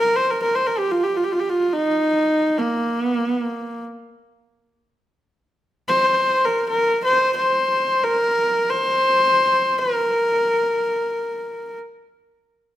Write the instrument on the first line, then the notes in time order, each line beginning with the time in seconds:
horsehead fiddle
0.00 A#4
0.16 C5
0.30 A#4
0.43 A#4
0.55 C5
0.67 A#4
0.78 G4
0.91 F4
1.03 G4
1.16 F4
1.24 G4
1.32 F4
1.40 G4
1.49 F4
1.73 D#4
2.58 A#3
3.03 B3
3.15 A#3
3.28 B3
3.40 A#3
5.88 C5
6.45 A#4
6.69 A#4
7.04 C5
7.37 C5
8.03 A#4
8.70 C5
9.78 A#4